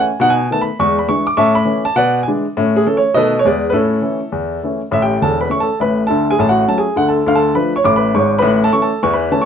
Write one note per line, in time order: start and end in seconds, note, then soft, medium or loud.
0.01 0.18 G#5 medium
0.20 0.46 B2 medium
0.20 0.38 D#4 medium
0.20 0.31 F#5 loud
0.30 0.48 G#5 medium
0.51 0.67 D#3 soft
0.51 0.67 A3 soft
0.51 0.68 B3 soft
0.51 0.61 A5 medium
0.61 0.78 B5 medium
0.79 1.05 E2 medium
0.79 0.97 G#3 medium
0.79 0.96 C#6 loud
0.99 1.08 B5 medium
1.08 1.25 E3 soft
1.08 1.25 G#3 soft
1.08 1.25 D4 soft
1.08 1.25 C#6 loud
1.27 1.37 D6 medium
1.37 1.63 A2 medium
1.37 1.55 C#4 medium
1.37 1.56 E5 medium
1.37 1.56 A5 medium
1.37 1.54 C#6 loud
1.55 1.81 B5 loud
1.65 1.82 E3 soft
1.65 1.82 A3 soft
1.65 1.83 C#4 medium
1.85 1.95 A5 medium
1.96 2.22 B2 medium
1.96 2.20 B4 medium
1.96 2.20 D5 medium
1.96 2.17 F#5 loud
2.23 2.28 G#5 medium
2.27 2.44 E3 soft
2.27 2.44 G#3 soft
2.27 2.44 D4 medium
2.57 2.82 A2 medium
2.57 2.74 C#4 medium
2.76 2.85 G#4 medium
2.85 3.02 E3 soft
2.85 3.03 A3 soft
2.85 3.03 C#4 soft
2.85 2.96 A4 medium
2.97 3.14 C#5 medium
3.14 3.40 B2 medium
3.14 3.31 D#3 soft
3.14 3.32 A3 soft
3.14 3.32 B3 soft
3.14 3.32 D#4 soft
3.14 3.38 A4 medium
3.14 3.39 B4 medium
3.14 3.35 D#5 loud
3.39 3.45 C#5 medium
3.44 3.70 E2 medium
3.44 3.61 E3 soft
3.44 3.63 G#3 soft
3.44 3.61 B3 soft
3.44 3.68 G#4 medium
3.44 3.68 B4 medium
3.44 3.66 D5 medium
3.70 3.98 A2 medium
3.70 4.01 C#4 medium
3.70 4.77 E4 medium
3.70 4.64 A4 medium
3.70 3.75 B4 medium
4.02 4.19 E3 soft
4.02 4.19 A3 soft
4.02 4.19 C#4 soft
4.32 4.58 E2 medium
4.63 4.79 E3 soft
4.63 4.80 A3 soft
4.63 4.81 C#4 soft
4.91 5.15 A1 medium
4.91 5.15 A2 medium
4.91 5.02 E5 medium
5.02 5.21 G4 medium
5.02 5.19 G5 medium
5.21 5.45 E1 medium
5.21 5.45 E2 medium
5.21 5.40 A4 medium
5.21 5.38 A5 medium
5.41 5.51 B4 medium
5.41 5.50 B5 medium
5.49 5.66 E3 soft
5.49 5.66 A3 soft
5.49 5.66 C#4 soft
5.49 5.60 C#6 medium
5.60 5.80 A4 medium
5.60 5.77 A5 medium
5.80 6.04 A1 medium
5.80 6.03 A2 medium
5.80 6.03 B4 medium
5.80 6.01 B5 medium
6.07 6.33 D2 medium
6.07 6.33 D3 medium
6.07 6.29 A4 medium
6.07 6.26 A5 medium
6.31 6.40 G#4 medium
6.31 6.39 G#5 medium
6.39 6.63 A1 medium
6.39 6.62 A2 medium
6.39 6.49 A5 medium
6.49 6.68 F#4 medium
6.49 6.66 F#5 medium
6.68 6.84 F#3 soft
6.68 6.85 A3 soft
6.68 6.84 C#4 soft
6.68 6.78 A5 medium
6.78 6.97 G#4 medium
6.78 6.95 G#5 medium
6.96 7.20 D2 medium
6.96 7.20 D3 medium
6.96 7.07 F#5 medium
7.08 7.27 A4 medium
7.08 7.25 A5 medium
7.26 7.52 D2 medium
7.26 7.52 D3 medium
7.26 7.37 F5 medium
7.35 7.55 A4 medium
7.35 7.53 A5 medium
7.54 7.71 F3 soft
7.54 7.71 A3 soft
7.54 7.72 D4 soft
7.54 7.74 B4 medium
7.54 7.71 B5 medium
7.76 7.86 C#5 medium
7.76 7.85 C#6 medium
7.84 8.10 A1 medium
7.84 8.10 A2 medium
7.84 7.95 D6 medium
7.96 8.15 B4 medium
7.96 8.13 B5 medium
8.14 8.38 G#1 medium
8.14 8.38 G#2 medium
8.14 8.38 C#5 medium
8.14 8.35 C#6 medium
8.39 8.68 A1 medium
8.39 8.68 A2 loud
8.39 8.61 B4 medium
8.39 8.59 B5 loud
8.64 8.74 A4 medium
8.64 8.73 A5 loud
8.72 8.89 E3 medium
8.72 8.89 A3 medium
8.72 8.89 C#4 soft
8.72 8.83 C#6 loud
8.82 9.02 A4 medium
8.82 9.00 A5 medium
9.03 9.28 E2 medium
9.03 9.28 E3 medium
9.03 9.12 C#6 loud
9.13 9.32 B4 medium
9.13 9.30 B5 medium
9.31 9.45 E3 medium
9.31 9.45 A3 soft
9.31 9.45 C#4 medium
9.31 9.41 A5 medium
9.42 9.45 C#6 medium